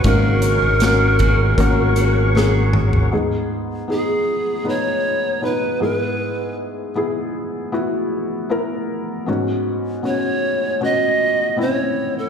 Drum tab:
HH |x-x-x-x-x-x-----|----------------|----------------|----------------|
SD |----o-------o---|----------------|----------------|----------------|
T2 |--------------o-|----------------|----------------|----------------|
FT |---------------o|----------------|----------------|----------------|
BD |o-----o-o-------|----------------|----------------|----------------|